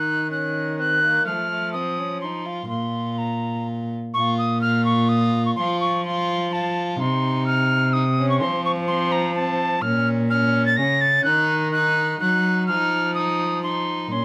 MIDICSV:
0, 0, Header, 1, 4, 480
1, 0, Start_track
1, 0, Key_signature, -5, "minor"
1, 0, Tempo, 478851
1, 1269, Time_signature, 3, 2, 24, 8
1, 4642, Tempo, 474308
1, 14376, End_track
2, 0, Start_track
2, 0, Title_t, "Recorder"
2, 0, Program_c, 0, 74
2, 0, Note_on_c, 0, 90, 91
2, 300, Note_off_c, 0, 90, 0
2, 316, Note_on_c, 0, 90, 91
2, 783, Note_off_c, 0, 90, 0
2, 788, Note_on_c, 0, 90, 93
2, 1257, Note_off_c, 0, 90, 0
2, 1264, Note_on_c, 0, 89, 90
2, 1726, Note_off_c, 0, 89, 0
2, 1732, Note_on_c, 0, 87, 90
2, 2208, Note_off_c, 0, 87, 0
2, 2216, Note_on_c, 0, 84, 69
2, 2687, Note_off_c, 0, 84, 0
2, 2693, Note_on_c, 0, 84, 80
2, 3189, Note_on_c, 0, 82, 64
2, 3204, Note_off_c, 0, 84, 0
2, 3677, Note_off_c, 0, 82, 0
2, 4147, Note_on_c, 0, 85, 115
2, 4377, Note_off_c, 0, 85, 0
2, 4392, Note_on_c, 0, 87, 100
2, 4619, Note_off_c, 0, 87, 0
2, 4625, Note_on_c, 0, 89, 109
2, 4858, Note_off_c, 0, 89, 0
2, 4864, Note_on_c, 0, 85, 97
2, 5102, Note_on_c, 0, 87, 106
2, 5118, Note_off_c, 0, 85, 0
2, 5469, Note_off_c, 0, 87, 0
2, 5475, Note_on_c, 0, 85, 87
2, 5530, Note_off_c, 0, 85, 0
2, 5579, Note_on_c, 0, 84, 116
2, 5823, Note_off_c, 0, 84, 0
2, 5829, Note_on_c, 0, 85, 99
2, 6066, Note_off_c, 0, 85, 0
2, 6072, Note_on_c, 0, 84, 109
2, 6561, Note_on_c, 0, 81, 101
2, 6576, Note_off_c, 0, 84, 0
2, 7028, Note_off_c, 0, 81, 0
2, 7034, Note_on_c, 0, 84, 96
2, 7501, Note_off_c, 0, 84, 0
2, 7507, Note_on_c, 0, 89, 127
2, 7981, Note_on_c, 0, 87, 103
2, 7996, Note_off_c, 0, 89, 0
2, 8345, Note_off_c, 0, 87, 0
2, 8351, Note_on_c, 0, 85, 92
2, 8441, Note_off_c, 0, 85, 0
2, 8447, Note_on_c, 0, 84, 116
2, 8695, Note_off_c, 0, 84, 0
2, 8711, Note_on_c, 0, 85, 101
2, 8772, Note_off_c, 0, 85, 0
2, 8938, Note_on_c, 0, 84, 114
2, 9182, Note_on_c, 0, 82, 102
2, 9197, Note_off_c, 0, 84, 0
2, 9408, Note_off_c, 0, 82, 0
2, 9414, Note_on_c, 0, 81, 105
2, 9890, Note_on_c, 0, 89, 124
2, 9905, Note_off_c, 0, 81, 0
2, 10160, Note_off_c, 0, 89, 0
2, 10381, Note_on_c, 0, 89, 127
2, 10737, Note_off_c, 0, 89, 0
2, 10744, Note_on_c, 0, 93, 112
2, 10849, Note_on_c, 0, 94, 111
2, 10864, Note_off_c, 0, 93, 0
2, 11096, Note_on_c, 0, 93, 108
2, 11111, Note_off_c, 0, 94, 0
2, 11325, Note_off_c, 0, 93, 0
2, 11331, Note_on_c, 0, 90, 127
2, 11806, Note_off_c, 0, 90, 0
2, 11812, Note_on_c, 0, 90, 127
2, 12289, Note_off_c, 0, 90, 0
2, 12298, Note_on_c, 0, 90, 126
2, 12771, Note_off_c, 0, 90, 0
2, 12777, Note_on_c, 0, 89, 122
2, 13251, Note_off_c, 0, 89, 0
2, 13257, Note_on_c, 0, 87, 118
2, 13739, Note_off_c, 0, 87, 0
2, 13751, Note_on_c, 0, 84, 100
2, 14222, Note_off_c, 0, 84, 0
2, 14228, Note_on_c, 0, 84, 112
2, 14376, Note_off_c, 0, 84, 0
2, 14376, End_track
3, 0, Start_track
3, 0, Title_t, "Violin"
3, 0, Program_c, 1, 40
3, 0, Note_on_c, 1, 63, 58
3, 308, Note_off_c, 1, 63, 0
3, 314, Note_on_c, 1, 61, 62
3, 790, Note_on_c, 1, 60, 65
3, 805, Note_off_c, 1, 61, 0
3, 1030, Note_off_c, 1, 60, 0
3, 1036, Note_on_c, 1, 58, 69
3, 1262, Note_on_c, 1, 57, 64
3, 1277, Note_off_c, 1, 58, 0
3, 1500, Note_off_c, 1, 57, 0
3, 1506, Note_on_c, 1, 57, 57
3, 1746, Note_on_c, 1, 60, 65
3, 1761, Note_off_c, 1, 57, 0
3, 1990, Note_on_c, 1, 61, 63
3, 2005, Note_off_c, 1, 60, 0
3, 2239, Note_on_c, 1, 63, 57
3, 2254, Note_off_c, 1, 61, 0
3, 2458, Note_on_c, 1, 65, 66
3, 2474, Note_off_c, 1, 63, 0
3, 2694, Note_off_c, 1, 65, 0
3, 2700, Note_on_c, 1, 65, 55
3, 3932, Note_off_c, 1, 65, 0
3, 4178, Note_on_c, 1, 65, 76
3, 4615, Note_off_c, 1, 65, 0
3, 4654, Note_on_c, 1, 65, 84
3, 5589, Note_off_c, 1, 65, 0
3, 5619, Note_on_c, 1, 65, 76
3, 6081, Note_off_c, 1, 65, 0
3, 6087, Note_on_c, 1, 65, 82
3, 6555, Note_off_c, 1, 65, 0
3, 6566, Note_on_c, 1, 65, 75
3, 7038, Note_on_c, 1, 63, 76
3, 7053, Note_off_c, 1, 65, 0
3, 7992, Note_off_c, 1, 63, 0
3, 7999, Note_on_c, 1, 63, 73
3, 8079, Note_off_c, 1, 63, 0
3, 8239, Note_on_c, 1, 61, 80
3, 8493, Note_on_c, 1, 60, 77
3, 8508, Note_off_c, 1, 61, 0
3, 8952, Note_off_c, 1, 60, 0
3, 8958, Note_on_c, 1, 60, 84
3, 9425, Note_off_c, 1, 60, 0
3, 9443, Note_on_c, 1, 60, 79
3, 9905, Note_off_c, 1, 60, 0
3, 9911, Note_on_c, 1, 61, 74
3, 10356, Note_off_c, 1, 61, 0
3, 10389, Note_on_c, 1, 61, 87
3, 10859, Note_off_c, 1, 61, 0
3, 10877, Note_on_c, 1, 61, 77
3, 11351, Note_on_c, 1, 63, 89
3, 11366, Note_off_c, 1, 61, 0
3, 11829, Note_off_c, 1, 63, 0
3, 11847, Note_on_c, 1, 63, 90
3, 12307, Note_off_c, 1, 63, 0
3, 12327, Note_on_c, 1, 63, 79
3, 12789, Note_off_c, 1, 63, 0
3, 12804, Note_on_c, 1, 63, 89
3, 13269, Note_off_c, 1, 63, 0
3, 13283, Note_on_c, 1, 63, 79
3, 13752, Note_off_c, 1, 63, 0
3, 13770, Note_on_c, 1, 63, 76
3, 14246, Note_on_c, 1, 61, 76
3, 14261, Note_off_c, 1, 63, 0
3, 14376, Note_off_c, 1, 61, 0
3, 14376, End_track
4, 0, Start_track
4, 0, Title_t, "Cello"
4, 0, Program_c, 2, 42
4, 0, Note_on_c, 2, 51, 72
4, 1248, Note_off_c, 2, 51, 0
4, 1277, Note_on_c, 2, 53, 69
4, 2684, Note_off_c, 2, 53, 0
4, 2710, Note_on_c, 2, 46, 57
4, 3937, Note_off_c, 2, 46, 0
4, 4168, Note_on_c, 2, 46, 85
4, 5563, Note_off_c, 2, 46, 0
4, 5615, Note_on_c, 2, 53, 88
4, 7018, Note_off_c, 2, 53, 0
4, 7044, Note_on_c, 2, 48, 88
4, 8473, Note_on_c, 2, 53, 95
4, 8488, Note_off_c, 2, 48, 0
4, 9910, Note_off_c, 2, 53, 0
4, 9923, Note_on_c, 2, 46, 86
4, 10870, Note_on_c, 2, 49, 84
4, 10885, Note_off_c, 2, 46, 0
4, 11342, Note_off_c, 2, 49, 0
4, 11349, Note_on_c, 2, 51, 94
4, 12288, Note_off_c, 2, 51, 0
4, 12314, Note_on_c, 2, 54, 80
4, 12799, Note_on_c, 2, 53, 84
4, 12814, Note_off_c, 2, 54, 0
4, 14237, Note_off_c, 2, 53, 0
4, 14243, Note_on_c, 2, 46, 84
4, 14376, Note_off_c, 2, 46, 0
4, 14376, End_track
0, 0, End_of_file